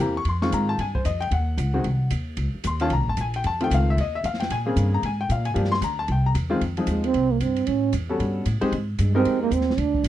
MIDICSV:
0, 0, Header, 1, 6, 480
1, 0, Start_track
1, 0, Key_signature, -4, "minor"
1, 0, Tempo, 264550
1, 470, Time_signature, 4, 2, 24, 8
1, 18289, End_track
2, 0, Start_track
2, 0, Title_t, "Grand piano"
2, 0, Program_c, 0, 0
2, 0, Note_on_c, 0, 52, 60
2, 0, Note_on_c, 0, 58, 59
2, 0, Note_on_c, 0, 60, 55
2, 3, Note_on_c, 0, 67, 69
2, 28, Note_on_c, 0, 82, 80
2, 250, Note_off_c, 0, 58, 0
2, 251, Note_off_c, 0, 52, 0
2, 254, Note_off_c, 0, 60, 0
2, 260, Note_off_c, 0, 67, 0
2, 294, Note_off_c, 0, 82, 0
2, 313, Note_on_c, 0, 85, 105
2, 480, Note_off_c, 0, 85, 0
2, 521, Note_on_c, 0, 84, 80
2, 763, Note_on_c, 0, 60, 64
2, 764, Note_on_c, 0, 51, 68
2, 767, Note_on_c, 0, 56, 66
2, 768, Note_on_c, 0, 85, 106
2, 769, Note_on_c, 0, 65, 77
2, 781, Note_off_c, 0, 84, 0
2, 947, Note_off_c, 0, 85, 0
2, 977, Note_on_c, 0, 82, 91
2, 1249, Note_off_c, 0, 82, 0
2, 1254, Note_on_c, 0, 81, 100
2, 1395, Note_off_c, 0, 51, 0
2, 1395, Note_off_c, 0, 60, 0
2, 1396, Note_off_c, 0, 56, 0
2, 1397, Note_off_c, 0, 65, 0
2, 1431, Note_off_c, 0, 81, 0
2, 1460, Note_on_c, 0, 80, 84
2, 1722, Note_on_c, 0, 72, 70
2, 1731, Note_off_c, 0, 80, 0
2, 1905, Note_off_c, 0, 72, 0
2, 1915, Note_on_c, 0, 75, 75
2, 2187, Note_on_c, 0, 79, 95
2, 2199, Note_off_c, 0, 75, 0
2, 2378, Note_off_c, 0, 79, 0
2, 2411, Note_on_c, 0, 78, 79
2, 3148, Note_on_c, 0, 56, 62
2, 3155, Note_on_c, 0, 60, 63
2, 3155, Note_on_c, 0, 66, 78
2, 3159, Note_on_c, 0, 51, 69
2, 3327, Note_off_c, 0, 56, 0
2, 3331, Note_off_c, 0, 60, 0
2, 3331, Note_off_c, 0, 66, 0
2, 3333, Note_off_c, 0, 51, 0
2, 3773, Note_off_c, 0, 78, 0
2, 4848, Note_on_c, 0, 84, 80
2, 5095, Note_on_c, 0, 58, 74
2, 5096, Note_on_c, 0, 51, 81
2, 5101, Note_on_c, 0, 61, 75
2, 5105, Note_on_c, 0, 65, 89
2, 5109, Note_off_c, 0, 84, 0
2, 5114, Note_on_c, 0, 81, 94
2, 5262, Note_off_c, 0, 58, 0
2, 5263, Note_off_c, 0, 51, 0
2, 5265, Note_off_c, 0, 61, 0
2, 5268, Note_off_c, 0, 65, 0
2, 5285, Note_off_c, 0, 81, 0
2, 5318, Note_on_c, 0, 82, 95
2, 5584, Note_off_c, 0, 82, 0
2, 5614, Note_on_c, 0, 81, 90
2, 5776, Note_off_c, 0, 81, 0
2, 5823, Note_on_c, 0, 80, 84
2, 6077, Note_off_c, 0, 80, 0
2, 6097, Note_on_c, 0, 79, 86
2, 6258, Note_off_c, 0, 79, 0
2, 6290, Note_on_c, 0, 81, 96
2, 6540, Note_on_c, 0, 51, 64
2, 6544, Note_on_c, 0, 60, 65
2, 6546, Note_on_c, 0, 57, 59
2, 6551, Note_off_c, 0, 81, 0
2, 6555, Note_on_c, 0, 65, 72
2, 6604, Note_on_c, 0, 79, 100
2, 6752, Note_off_c, 0, 79, 0
2, 6794, Note_on_c, 0, 77, 82
2, 7043, Note_off_c, 0, 77, 0
2, 7081, Note_on_c, 0, 76, 86
2, 7167, Note_off_c, 0, 51, 0
2, 7169, Note_off_c, 0, 60, 0
2, 7170, Note_off_c, 0, 57, 0
2, 7174, Note_off_c, 0, 65, 0
2, 7230, Note_off_c, 0, 76, 0
2, 7270, Note_on_c, 0, 75, 75
2, 7521, Note_off_c, 0, 75, 0
2, 7537, Note_on_c, 0, 76, 88
2, 7698, Note_off_c, 0, 76, 0
2, 7722, Note_on_c, 0, 77, 78
2, 7980, Note_on_c, 0, 79, 82
2, 7987, Note_off_c, 0, 77, 0
2, 8159, Note_off_c, 0, 79, 0
2, 8195, Note_on_c, 0, 80, 95
2, 8360, Note_off_c, 0, 80, 0
2, 8454, Note_on_c, 0, 49, 69
2, 8455, Note_on_c, 0, 58, 67
2, 8464, Note_on_c, 0, 60, 68
2, 8466, Note_on_c, 0, 68, 81
2, 8970, Note_on_c, 0, 82, 94
2, 9084, Note_off_c, 0, 49, 0
2, 9084, Note_off_c, 0, 58, 0
2, 9089, Note_off_c, 0, 60, 0
2, 9089, Note_off_c, 0, 68, 0
2, 9134, Note_off_c, 0, 82, 0
2, 9173, Note_on_c, 0, 80, 83
2, 9432, Note_off_c, 0, 80, 0
2, 9447, Note_on_c, 0, 79, 89
2, 9612, Note_off_c, 0, 79, 0
2, 9650, Note_on_c, 0, 77, 71
2, 9897, Note_on_c, 0, 80, 84
2, 9910, Note_off_c, 0, 77, 0
2, 10054, Note_on_c, 0, 53, 69
2, 10066, Note_on_c, 0, 58, 59
2, 10072, Note_on_c, 0, 62, 61
2, 10076, Note_off_c, 0, 80, 0
2, 10076, Note_on_c, 0, 67, 69
2, 10330, Note_off_c, 0, 53, 0
2, 10336, Note_off_c, 0, 58, 0
2, 10339, Note_off_c, 0, 62, 0
2, 10342, Note_off_c, 0, 67, 0
2, 10373, Note_on_c, 0, 84, 119
2, 10554, Note_off_c, 0, 84, 0
2, 10597, Note_on_c, 0, 82, 97
2, 10863, Note_off_c, 0, 82, 0
2, 10870, Note_on_c, 0, 81, 92
2, 11043, Note_off_c, 0, 81, 0
2, 11101, Note_on_c, 0, 79, 73
2, 11355, Note_off_c, 0, 79, 0
2, 11364, Note_on_c, 0, 82, 94
2, 11466, Note_off_c, 0, 82, 0
2, 11786, Note_on_c, 0, 51, 75
2, 11795, Note_on_c, 0, 56, 81
2, 11799, Note_on_c, 0, 65, 91
2, 11805, Note_on_c, 0, 60, 80
2, 11967, Note_off_c, 0, 51, 0
2, 11971, Note_off_c, 0, 56, 0
2, 11974, Note_off_c, 0, 65, 0
2, 11976, Note_off_c, 0, 60, 0
2, 12295, Note_on_c, 0, 53, 67
2, 12299, Note_on_c, 0, 60, 51
2, 12308, Note_on_c, 0, 56, 56
2, 12309, Note_on_c, 0, 68, 62
2, 12310, Note_on_c, 0, 63, 53
2, 12922, Note_off_c, 0, 53, 0
2, 12924, Note_off_c, 0, 60, 0
2, 12929, Note_off_c, 0, 56, 0
2, 12929, Note_off_c, 0, 63, 0
2, 12929, Note_off_c, 0, 68, 0
2, 14685, Note_on_c, 0, 55, 66
2, 14686, Note_on_c, 0, 59, 62
2, 14700, Note_on_c, 0, 61, 61
2, 14702, Note_on_c, 0, 69, 73
2, 14706, Note_on_c, 0, 66, 60
2, 15315, Note_off_c, 0, 55, 0
2, 15316, Note_off_c, 0, 59, 0
2, 15323, Note_off_c, 0, 61, 0
2, 15324, Note_off_c, 0, 69, 0
2, 15326, Note_off_c, 0, 66, 0
2, 15625, Note_on_c, 0, 60, 78
2, 15628, Note_on_c, 0, 56, 86
2, 15629, Note_on_c, 0, 63, 69
2, 15629, Note_on_c, 0, 72, 97
2, 15630, Note_on_c, 0, 67, 71
2, 15804, Note_off_c, 0, 60, 0
2, 15805, Note_off_c, 0, 56, 0
2, 15806, Note_off_c, 0, 63, 0
2, 15806, Note_off_c, 0, 72, 0
2, 15807, Note_off_c, 0, 67, 0
2, 16591, Note_on_c, 0, 56, 72
2, 16601, Note_on_c, 0, 60, 67
2, 16601, Note_on_c, 0, 63, 74
2, 16612, Note_on_c, 0, 67, 72
2, 16616, Note_on_c, 0, 70, 85
2, 17225, Note_off_c, 0, 56, 0
2, 17230, Note_off_c, 0, 63, 0
2, 17231, Note_off_c, 0, 60, 0
2, 17236, Note_off_c, 0, 67, 0
2, 17238, Note_off_c, 0, 70, 0
2, 18289, End_track
3, 0, Start_track
3, 0, Title_t, "Trombone"
3, 0, Program_c, 1, 57
3, 12520, Note_on_c, 1, 56, 78
3, 12790, Note_on_c, 1, 60, 99
3, 12817, Note_off_c, 1, 56, 0
3, 13265, Note_on_c, 1, 58, 85
3, 13292, Note_off_c, 1, 60, 0
3, 13466, Note_on_c, 1, 60, 82
3, 13493, Note_off_c, 1, 58, 0
3, 13907, Note_on_c, 1, 61, 83
3, 13934, Note_off_c, 1, 60, 0
3, 14391, Note_off_c, 1, 61, 0
3, 16327, Note_on_c, 1, 56, 63
3, 16592, Note_off_c, 1, 56, 0
3, 16607, Note_on_c, 1, 60, 104
3, 17051, Note_off_c, 1, 60, 0
3, 17100, Note_on_c, 1, 58, 93
3, 17308, Note_on_c, 1, 60, 82
3, 17335, Note_off_c, 1, 58, 0
3, 17767, Note_on_c, 1, 62, 87
3, 17795, Note_off_c, 1, 60, 0
3, 18236, Note_off_c, 1, 62, 0
3, 18289, End_track
4, 0, Start_track
4, 0, Title_t, "Upright bass"
4, 0, Program_c, 2, 32
4, 0, Note_on_c, 2, 40, 84
4, 442, Note_off_c, 2, 40, 0
4, 451, Note_on_c, 2, 41, 75
4, 927, Note_off_c, 2, 41, 0
4, 950, Note_on_c, 2, 44, 97
4, 1407, Note_off_c, 2, 44, 0
4, 1418, Note_on_c, 2, 43, 78
4, 1892, Note_off_c, 2, 43, 0
4, 1911, Note_on_c, 2, 41, 93
4, 2366, Note_off_c, 2, 41, 0
4, 2377, Note_on_c, 2, 39, 87
4, 2846, Note_off_c, 2, 39, 0
4, 2857, Note_on_c, 2, 37, 105
4, 3333, Note_off_c, 2, 37, 0
4, 3341, Note_on_c, 2, 36, 76
4, 3811, Note_off_c, 2, 36, 0
4, 3822, Note_on_c, 2, 39, 79
4, 4287, Note_off_c, 2, 39, 0
4, 4298, Note_on_c, 2, 37, 76
4, 4580, Note_off_c, 2, 37, 0
4, 4796, Note_on_c, 2, 39, 95
4, 5264, Note_off_c, 2, 39, 0
4, 5272, Note_on_c, 2, 36, 84
4, 5426, Note_off_c, 2, 36, 0
4, 5426, Note_on_c, 2, 34, 50
4, 5585, Note_off_c, 2, 34, 0
4, 5596, Note_on_c, 2, 32, 67
4, 5741, Note_off_c, 2, 32, 0
4, 5752, Note_on_c, 2, 34, 85
4, 6222, Note_off_c, 2, 34, 0
4, 6247, Note_on_c, 2, 41, 82
4, 6710, Note_off_c, 2, 41, 0
4, 6723, Note_on_c, 2, 37, 101
4, 7188, Note_off_c, 2, 37, 0
4, 7199, Note_on_c, 2, 39, 77
4, 7666, Note_off_c, 2, 39, 0
4, 7688, Note_on_c, 2, 41, 89
4, 8150, Note_off_c, 2, 41, 0
4, 8164, Note_on_c, 2, 46, 74
4, 8628, Note_off_c, 2, 46, 0
4, 8641, Note_on_c, 2, 43, 97
4, 9106, Note_off_c, 2, 43, 0
4, 9120, Note_on_c, 2, 44, 88
4, 9586, Note_off_c, 2, 44, 0
4, 9601, Note_on_c, 2, 46, 98
4, 10066, Note_off_c, 2, 46, 0
4, 10074, Note_on_c, 2, 43, 84
4, 10537, Note_off_c, 2, 43, 0
4, 10548, Note_on_c, 2, 38, 98
4, 11019, Note_off_c, 2, 38, 0
4, 11038, Note_on_c, 2, 36, 84
4, 11504, Note_off_c, 2, 36, 0
4, 11513, Note_on_c, 2, 40, 86
4, 11981, Note_off_c, 2, 40, 0
4, 11996, Note_on_c, 2, 41, 74
4, 12451, Note_off_c, 2, 41, 0
4, 12462, Note_on_c, 2, 39, 91
4, 12935, Note_off_c, 2, 39, 0
4, 12960, Note_on_c, 2, 36, 78
4, 13418, Note_off_c, 2, 36, 0
4, 13429, Note_on_c, 2, 43, 78
4, 13898, Note_off_c, 2, 43, 0
4, 13920, Note_on_c, 2, 45, 81
4, 14376, Note_off_c, 2, 45, 0
4, 14386, Note_on_c, 2, 40, 94
4, 14856, Note_off_c, 2, 40, 0
4, 14866, Note_on_c, 2, 43, 82
4, 15336, Note_off_c, 2, 43, 0
4, 15347, Note_on_c, 2, 45, 88
4, 15622, Note_off_c, 2, 45, 0
4, 15819, Note_on_c, 2, 44, 87
4, 16291, Note_off_c, 2, 44, 0
4, 16309, Note_on_c, 2, 43, 101
4, 16775, Note_off_c, 2, 43, 0
4, 16791, Note_on_c, 2, 41, 84
4, 17241, Note_off_c, 2, 41, 0
4, 17252, Note_on_c, 2, 39, 94
4, 17725, Note_off_c, 2, 39, 0
4, 17733, Note_on_c, 2, 38, 89
4, 18204, Note_off_c, 2, 38, 0
4, 18212, Note_on_c, 2, 36, 101
4, 18289, Note_off_c, 2, 36, 0
4, 18289, End_track
5, 0, Start_track
5, 0, Title_t, "Muted upright bass strokes"
5, 4612, Note_on_c, 9, 29, 40
5, 4793, Note_off_c, 9, 29, 0
5, 15641, Note_on_c, 9, 29, 40
5, 15822, Note_off_c, 9, 29, 0
5, 18289, End_track
6, 0, Start_track
6, 0, Title_t, "Drums"
6, 452, Note_on_c, 9, 51, 58
6, 633, Note_off_c, 9, 51, 0
6, 759, Note_on_c, 9, 38, 43
6, 940, Note_off_c, 9, 38, 0
6, 949, Note_on_c, 9, 44, 67
6, 949, Note_on_c, 9, 51, 68
6, 1131, Note_off_c, 9, 44, 0
6, 1131, Note_off_c, 9, 51, 0
6, 1428, Note_on_c, 9, 51, 58
6, 1610, Note_off_c, 9, 51, 0
6, 1724, Note_on_c, 9, 36, 65
6, 1903, Note_on_c, 9, 44, 56
6, 1903, Note_on_c, 9, 51, 62
6, 1905, Note_off_c, 9, 36, 0
6, 2084, Note_off_c, 9, 44, 0
6, 2084, Note_off_c, 9, 51, 0
6, 2211, Note_on_c, 9, 51, 50
6, 2384, Note_off_c, 9, 51, 0
6, 2384, Note_on_c, 9, 51, 61
6, 2565, Note_off_c, 9, 51, 0
6, 2864, Note_on_c, 9, 44, 53
6, 2864, Note_on_c, 9, 51, 68
6, 3045, Note_off_c, 9, 44, 0
6, 3045, Note_off_c, 9, 51, 0
6, 3340, Note_on_c, 9, 51, 50
6, 3522, Note_off_c, 9, 51, 0
6, 3818, Note_on_c, 9, 44, 47
6, 3818, Note_on_c, 9, 51, 73
6, 3999, Note_off_c, 9, 44, 0
6, 3999, Note_off_c, 9, 51, 0
6, 4296, Note_on_c, 9, 51, 61
6, 4478, Note_off_c, 9, 51, 0
6, 4784, Note_on_c, 9, 44, 71
6, 4784, Note_on_c, 9, 51, 72
6, 4965, Note_off_c, 9, 44, 0
6, 4965, Note_off_c, 9, 51, 0
6, 5073, Note_on_c, 9, 51, 49
6, 5255, Note_off_c, 9, 51, 0
6, 5260, Note_on_c, 9, 51, 57
6, 5442, Note_off_c, 9, 51, 0
6, 5748, Note_on_c, 9, 44, 58
6, 5748, Note_on_c, 9, 51, 60
6, 5929, Note_off_c, 9, 44, 0
6, 5929, Note_off_c, 9, 51, 0
6, 6054, Note_on_c, 9, 51, 50
6, 6236, Note_off_c, 9, 51, 0
6, 6239, Note_on_c, 9, 51, 53
6, 6420, Note_off_c, 9, 51, 0
6, 6540, Note_on_c, 9, 51, 44
6, 6722, Note_off_c, 9, 51, 0
6, 6735, Note_on_c, 9, 44, 69
6, 6735, Note_on_c, 9, 51, 74
6, 6917, Note_off_c, 9, 44, 0
6, 6917, Note_off_c, 9, 51, 0
6, 7222, Note_on_c, 9, 51, 64
6, 7403, Note_off_c, 9, 51, 0
6, 7693, Note_on_c, 9, 44, 48
6, 7693, Note_on_c, 9, 51, 60
6, 7869, Note_on_c, 9, 38, 29
6, 7875, Note_off_c, 9, 44, 0
6, 7875, Note_off_c, 9, 51, 0
6, 7988, Note_on_c, 9, 51, 49
6, 8025, Note_off_c, 9, 38, 0
6, 8025, Note_on_c, 9, 38, 47
6, 8169, Note_off_c, 9, 51, 0
6, 8171, Note_on_c, 9, 51, 65
6, 8206, Note_off_c, 9, 38, 0
6, 8352, Note_off_c, 9, 51, 0
6, 8646, Note_on_c, 9, 44, 59
6, 8646, Note_on_c, 9, 51, 71
6, 8827, Note_off_c, 9, 44, 0
6, 8827, Note_off_c, 9, 51, 0
6, 9126, Note_on_c, 9, 51, 60
6, 9308, Note_off_c, 9, 51, 0
6, 9608, Note_on_c, 9, 44, 62
6, 9608, Note_on_c, 9, 51, 60
6, 9790, Note_off_c, 9, 44, 0
6, 9790, Note_off_c, 9, 51, 0
6, 9890, Note_on_c, 9, 51, 50
6, 10072, Note_off_c, 9, 51, 0
6, 10084, Note_on_c, 9, 51, 58
6, 10244, Note_on_c, 9, 38, 33
6, 10266, Note_off_c, 9, 51, 0
6, 10408, Note_off_c, 9, 38, 0
6, 10408, Note_on_c, 9, 38, 42
6, 10556, Note_on_c, 9, 44, 62
6, 10556, Note_on_c, 9, 51, 67
6, 10590, Note_off_c, 9, 38, 0
6, 10738, Note_off_c, 9, 44, 0
6, 10738, Note_off_c, 9, 51, 0
6, 11029, Note_on_c, 9, 51, 51
6, 11211, Note_off_c, 9, 51, 0
6, 11519, Note_on_c, 9, 44, 49
6, 11519, Note_on_c, 9, 51, 72
6, 11701, Note_off_c, 9, 44, 0
6, 11701, Note_off_c, 9, 51, 0
6, 11998, Note_on_c, 9, 51, 62
6, 12180, Note_off_c, 9, 51, 0
6, 12282, Note_on_c, 9, 51, 45
6, 12459, Note_off_c, 9, 51, 0
6, 12459, Note_on_c, 9, 44, 58
6, 12459, Note_on_c, 9, 51, 69
6, 12640, Note_off_c, 9, 44, 0
6, 12640, Note_off_c, 9, 51, 0
6, 12768, Note_on_c, 9, 51, 45
6, 12949, Note_off_c, 9, 51, 0
6, 12954, Note_on_c, 9, 51, 56
6, 13136, Note_off_c, 9, 51, 0
6, 13434, Note_on_c, 9, 44, 49
6, 13434, Note_on_c, 9, 51, 63
6, 13615, Note_off_c, 9, 44, 0
6, 13615, Note_off_c, 9, 51, 0
6, 13723, Note_on_c, 9, 51, 49
6, 13904, Note_off_c, 9, 51, 0
6, 13909, Note_on_c, 9, 51, 61
6, 14090, Note_off_c, 9, 51, 0
6, 14381, Note_on_c, 9, 44, 53
6, 14381, Note_on_c, 9, 51, 74
6, 14563, Note_off_c, 9, 44, 0
6, 14563, Note_off_c, 9, 51, 0
6, 14875, Note_on_c, 9, 51, 56
6, 15057, Note_off_c, 9, 51, 0
6, 15341, Note_on_c, 9, 44, 55
6, 15341, Note_on_c, 9, 51, 67
6, 15522, Note_off_c, 9, 44, 0
6, 15522, Note_off_c, 9, 51, 0
6, 15629, Note_on_c, 9, 51, 47
6, 15811, Note_off_c, 9, 51, 0
6, 15829, Note_on_c, 9, 51, 59
6, 16011, Note_off_c, 9, 51, 0
6, 16303, Note_on_c, 9, 44, 64
6, 16303, Note_on_c, 9, 51, 71
6, 16485, Note_off_c, 9, 44, 0
6, 16485, Note_off_c, 9, 51, 0
6, 16788, Note_on_c, 9, 51, 68
6, 16969, Note_off_c, 9, 51, 0
6, 17264, Note_on_c, 9, 44, 56
6, 17264, Note_on_c, 9, 51, 63
6, 17438, Note_on_c, 9, 38, 28
6, 17445, Note_off_c, 9, 44, 0
6, 17445, Note_off_c, 9, 51, 0
6, 17605, Note_off_c, 9, 38, 0
6, 17605, Note_on_c, 9, 38, 51
6, 17742, Note_on_c, 9, 51, 60
6, 17787, Note_off_c, 9, 38, 0
6, 17923, Note_off_c, 9, 51, 0
6, 18043, Note_on_c, 9, 36, 57
6, 18221, Note_on_c, 9, 44, 59
6, 18221, Note_on_c, 9, 51, 76
6, 18224, Note_off_c, 9, 36, 0
6, 18289, Note_off_c, 9, 44, 0
6, 18289, Note_off_c, 9, 51, 0
6, 18289, End_track
0, 0, End_of_file